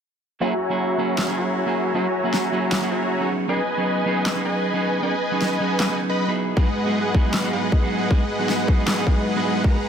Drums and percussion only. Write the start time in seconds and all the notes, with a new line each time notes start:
1.18 snare, clap
2.34 snare
2.72 snare, clap
4.26 snare, clap
5.41 snare
5.80 snare, clap
6.57 kick
7.15 kick
7.34 snare, clap
7.72 kick
8.11 kick
8.49 snare
8.68 kick
8.88 snare, clap
9.07 kick
9.64 kick